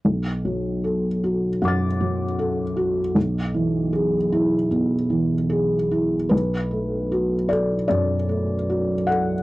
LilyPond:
\new Staff \with { instrumentName = "Felt piano" } { \time 4/4 \key b \dorian \tempo 4 = 76 << { r2 <fis'' d''' a'''>2 | r1 | b'4. d''8 d''4. fis''8 | } \\ { b,,8 fis8 a'8 fis'8 fis,8 fis8 a'8 fis'8 | b,,8 e8 gis'8 e'8 b,8 e8 gis'8 e'8 | b,,8 a8 fis'8 a'8 fis,8 a8 fis'8 a'8 | } >> }